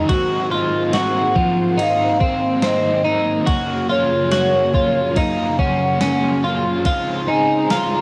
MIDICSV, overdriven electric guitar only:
0, 0, Header, 1, 2, 480
1, 0, Start_track
1, 0, Tempo, 845070
1, 54, Time_signature, 4, 2, 24, 8
1, 4551, End_track
2, 0, Start_track
2, 0, Title_t, "Overdriven electric guitar"
2, 0, Program_c, 0, 29
2, 0, Note_on_c, 0, 61, 52
2, 0, Note_on_c, 0, 63, 53
2, 52, Note_on_c, 0, 44, 78
2, 57, Note_off_c, 0, 63, 0
2, 59, Note_on_c, 0, 51, 84
2, 62, Note_off_c, 0, 61, 0
2, 63, Note_on_c, 0, 54, 90
2, 66, Note_on_c, 0, 60, 95
2, 69, Note_on_c, 0, 63, 106
2, 285, Note_off_c, 0, 63, 0
2, 292, Note_on_c, 0, 63, 58
2, 293, Note_off_c, 0, 44, 0
2, 296, Note_off_c, 0, 60, 0
2, 297, Note_off_c, 0, 51, 0
2, 299, Note_off_c, 0, 54, 0
2, 303, Note_on_c, 0, 60, 56
2, 312, Note_on_c, 0, 54, 47
2, 529, Note_on_c, 0, 51, 65
2, 533, Note_off_c, 0, 63, 0
2, 534, Note_off_c, 0, 54, 0
2, 539, Note_off_c, 0, 60, 0
2, 541, Note_on_c, 0, 54, 59
2, 547, Note_on_c, 0, 60, 67
2, 556, Note_on_c, 0, 63, 65
2, 762, Note_off_c, 0, 63, 0
2, 769, Note_on_c, 0, 63, 58
2, 772, Note_off_c, 0, 51, 0
2, 775, Note_off_c, 0, 60, 0
2, 778, Note_off_c, 0, 54, 0
2, 781, Note_on_c, 0, 60, 51
2, 791, Note_on_c, 0, 54, 44
2, 1011, Note_off_c, 0, 63, 0
2, 1012, Note_on_c, 0, 44, 77
2, 1013, Note_off_c, 0, 54, 0
2, 1018, Note_off_c, 0, 60, 0
2, 1018, Note_on_c, 0, 51, 81
2, 1020, Note_on_c, 0, 54, 83
2, 1024, Note_on_c, 0, 60, 90
2, 1029, Note_on_c, 0, 63, 96
2, 1243, Note_off_c, 0, 63, 0
2, 1250, Note_on_c, 0, 63, 52
2, 1253, Note_off_c, 0, 44, 0
2, 1254, Note_off_c, 0, 60, 0
2, 1256, Note_off_c, 0, 51, 0
2, 1257, Note_off_c, 0, 54, 0
2, 1261, Note_on_c, 0, 60, 45
2, 1272, Note_on_c, 0, 54, 40
2, 1488, Note_on_c, 0, 51, 68
2, 1491, Note_off_c, 0, 54, 0
2, 1492, Note_off_c, 0, 63, 0
2, 1498, Note_off_c, 0, 60, 0
2, 1498, Note_on_c, 0, 54, 62
2, 1504, Note_on_c, 0, 60, 68
2, 1510, Note_on_c, 0, 63, 68
2, 1722, Note_off_c, 0, 63, 0
2, 1729, Note_on_c, 0, 63, 62
2, 1731, Note_off_c, 0, 51, 0
2, 1732, Note_off_c, 0, 60, 0
2, 1736, Note_off_c, 0, 54, 0
2, 1739, Note_on_c, 0, 60, 57
2, 1751, Note_on_c, 0, 54, 50
2, 1966, Note_on_c, 0, 42, 91
2, 1970, Note_on_c, 0, 49, 93
2, 1972, Note_off_c, 0, 63, 0
2, 1974, Note_off_c, 0, 60, 0
2, 1977, Note_on_c, 0, 58, 96
2, 1981, Note_on_c, 0, 61, 104
2, 1983, Note_off_c, 0, 54, 0
2, 2202, Note_off_c, 0, 61, 0
2, 2209, Note_on_c, 0, 61, 55
2, 2210, Note_off_c, 0, 42, 0
2, 2212, Note_off_c, 0, 49, 0
2, 2213, Note_off_c, 0, 58, 0
2, 2220, Note_on_c, 0, 58, 53
2, 2230, Note_on_c, 0, 53, 48
2, 2451, Note_off_c, 0, 61, 0
2, 2451, Note_on_c, 0, 49, 67
2, 2457, Note_off_c, 0, 58, 0
2, 2462, Note_off_c, 0, 53, 0
2, 2467, Note_on_c, 0, 58, 65
2, 2471, Note_on_c, 0, 61, 63
2, 2686, Note_off_c, 0, 61, 0
2, 2692, Note_off_c, 0, 49, 0
2, 2693, Note_on_c, 0, 61, 52
2, 2699, Note_off_c, 0, 58, 0
2, 2706, Note_on_c, 0, 58, 54
2, 2717, Note_on_c, 0, 53, 44
2, 2933, Note_off_c, 0, 61, 0
2, 2933, Note_on_c, 0, 42, 89
2, 2935, Note_off_c, 0, 53, 0
2, 2938, Note_on_c, 0, 49, 81
2, 2940, Note_off_c, 0, 58, 0
2, 2941, Note_on_c, 0, 53, 86
2, 2948, Note_on_c, 0, 58, 92
2, 2951, Note_on_c, 0, 61, 89
2, 3165, Note_off_c, 0, 61, 0
2, 3172, Note_on_c, 0, 61, 59
2, 3174, Note_off_c, 0, 42, 0
2, 3176, Note_off_c, 0, 49, 0
2, 3178, Note_off_c, 0, 53, 0
2, 3179, Note_off_c, 0, 58, 0
2, 3186, Note_on_c, 0, 58, 49
2, 3194, Note_on_c, 0, 53, 42
2, 3413, Note_off_c, 0, 61, 0
2, 3414, Note_on_c, 0, 49, 63
2, 3416, Note_off_c, 0, 53, 0
2, 3420, Note_off_c, 0, 58, 0
2, 3423, Note_on_c, 0, 53, 59
2, 3431, Note_on_c, 0, 58, 73
2, 3438, Note_on_c, 0, 61, 72
2, 3653, Note_off_c, 0, 61, 0
2, 3654, Note_off_c, 0, 49, 0
2, 3659, Note_off_c, 0, 53, 0
2, 3660, Note_on_c, 0, 61, 55
2, 3662, Note_off_c, 0, 58, 0
2, 3671, Note_on_c, 0, 58, 60
2, 3681, Note_on_c, 0, 53, 52
2, 3896, Note_off_c, 0, 53, 0
2, 3897, Note_off_c, 0, 61, 0
2, 3897, Note_on_c, 0, 49, 84
2, 3903, Note_off_c, 0, 58, 0
2, 3903, Note_on_c, 0, 53, 91
2, 3907, Note_on_c, 0, 56, 89
2, 3912, Note_on_c, 0, 60, 92
2, 3913, Note_on_c, 0, 68, 92
2, 4129, Note_off_c, 0, 68, 0
2, 4136, Note_off_c, 0, 49, 0
2, 4136, Note_on_c, 0, 68, 62
2, 4139, Note_off_c, 0, 53, 0
2, 4140, Note_off_c, 0, 56, 0
2, 4143, Note_off_c, 0, 60, 0
2, 4151, Note_on_c, 0, 60, 54
2, 4161, Note_on_c, 0, 56, 53
2, 4374, Note_on_c, 0, 53, 59
2, 4375, Note_off_c, 0, 56, 0
2, 4375, Note_off_c, 0, 68, 0
2, 4382, Note_off_c, 0, 60, 0
2, 4382, Note_on_c, 0, 56, 69
2, 4389, Note_on_c, 0, 60, 63
2, 4396, Note_on_c, 0, 68, 75
2, 4551, Note_off_c, 0, 53, 0
2, 4551, Note_off_c, 0, 56, 0
2, 4551, Note_off_c, 0, 60, 0
2, 4551, Note_off_c, 0, 68, 0
2, 4551, End_track
0, 0, End_of_file